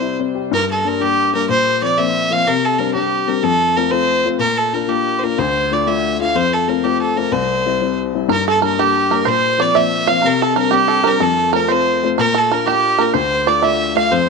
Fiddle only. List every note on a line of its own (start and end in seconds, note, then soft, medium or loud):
0.00 0.15 C5 loud
0.53 0.69 A#4 loud
0.71 0.89 A4 medium
0.88 1.03 A#4 medium
1.01 1.33 G4 loud
1.35 1.48 A#4 medium
1.50 1.80 C5 loud
1.84 2.00 D5 medium
1.98 2.34 E5 loud
2.32 2.49 F5 loud
2.47 2.66 A#4 loud
2.65 2.80 A4 medium
2.79 2.94 A#4 medium
2.94 3.29 G4 medium
3.28 3.45 A#4 medium
3.44 3.78 A4 loud
3.77 3.93 A#4 medium
3.91 4.28 C5 loud
4.40 4.59 A#4 loud
4.57 4.75 A4 medium
4.74 4.91 A#4 medium
4.89 5.21 G4 medium
5.19 5.25 C5 medium
5.23 5.40 A#4 medium
5.38 5.74 C5 loud
5.73 5.89 D5 medium
5.88 6.20 E5 medium
6.21 6.37 F5 medium
6.36 6.55 C5 loud
6.53 6.70 A4 medium
6.68 6.85 A#4 medium
6.84 7.01 G4 medium
7.01 7.19 A4 medium
7.17 7.34 A#4 medium
7.32 7.98 C5 medium
8.32 8.47 A#4 loud
8.49 8.62 A4 medium
8.65 8.81 A#4 medium
8.80 9.14 G4 medium
9.13 9.30 A#4 medium
9.29 9.63 C5 loud
9.62 9.78 D5 loud
9.76 10.10 E5 loud
10.09 10.27 F5 loud
10.26 10.44 A#4 loud
10.42 10.57 A4 loud
10.59 10.75 A#4 medium
10.74 11.09 G4 loud
11.07 11.24 A#4 loud
11.22 11.54 A4 loud
11.55 11.73 A#4 medium
11.71 12.07 C5 loud
12.19 12.40 A#4 loud
12.38 12.55 A4 loud
12.53 12.68 A#4 medium
12.67 13.03 G4 loud
13.01 13.15 A#4 medium
13.15 13.50 C5 loud
13.49 13.66 D5 medium
13.64 13.97 E5 loud
13.97 14.14 F5 loud
14.12 14.29 C5 loud